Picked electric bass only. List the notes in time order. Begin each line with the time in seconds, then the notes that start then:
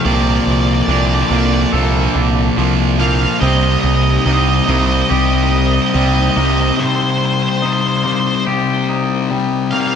0.05 C2
0.47 C2
0.88 C2
1.30 C2
1.73 C2
2.15 C2
2.58 C2
3.42 C2
3.84 C2
4.26 C2
4.68 C2
5.11 C2
5.95 C2
6.37 C2